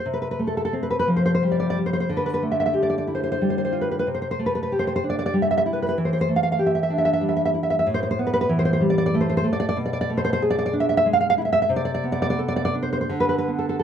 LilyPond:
\new Staff \with { instrumentName = "Nylon-string guitar" } { \time 3/4 \key c \major \tempo 4 = 93 << { r32 b'32 b'32 b'32 r32 a'32 a'32 a'32 r32 b'32 b'32 b'32 r32 c''32 c''32 c''32 r32 d''32 d''32 d''32 r32 c''32 c''32 c''32 | r32 b'32 b'32 b'32 r32 e''32 e''32 e''32 r32 d''32 d''32 d''32 r32 c''32 c''32 c''32 r32 c''32 c''32 c''32 r32 b'32 b'32 b'32 | r32 c''32 c''32 c''32 r32 b'32 b'32 b'32 r32 c''32 c''32 c''32 r32 d''32 d''32 d''32 r32 e''32 e''32 e''32 r32 b'32 b'32 b'32 | r32 c''32 c''32 c''32 r32 f''32 f''32 f''32 r32 e''32 e''32 e''32 r32 e''32 e''32 e''32 r32 e''32 e''32 e''32 r32 e''32 e''32 e''32 |
\key a \minor r32 c''32 c''32 c''32 r32 b'32 b'32 b'32 r32 c''32 c''32 c''32 r32 d''32 d''32 d''32 r32 c''32 c''32 c''32 r32 d''32 d''32 d''32 | r32 d''32 d''32 d''32 r32 c''32 c''32 c''32 r32 d''32 d''32 d''32 r32 e''32 e''32 e''32 r32 f''32 f''32 f''32 r32 e''32 e''32 e''32 | r32 d''32 d''32 d''32 r32 d''32 d''32 d''32 r32 d''32 d''32 d''32 r32 c''32 c''32 c''32 r32 b'32 b'32 b'32 r32 a'32 a'32 a'32 | } \\ { c8 a8 c'8 f8 g8 g8 | d8 a8 g'8 e'8 g8 f'8 | c8 a8 g'8 d'8 g8 e'8 | e8 a8 g'8 d'8 g8 e'8 |
a,8 b8 e8 g8 a8 a8 | b,8 a8 gis'8 d'8 gis8 e'8 | c8 b8 a'8 d'8 d8 b8 | } >> }